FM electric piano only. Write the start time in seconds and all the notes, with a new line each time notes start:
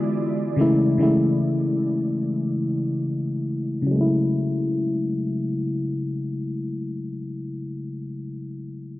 0.56 C#3 E3 G#3 A3
0.61 E4
0.98 C#3 E3 G#3 A3
1.03 E4
3.82 C#3
3.87 F#3
3.91 G#3
3.96 A3
4.01 E4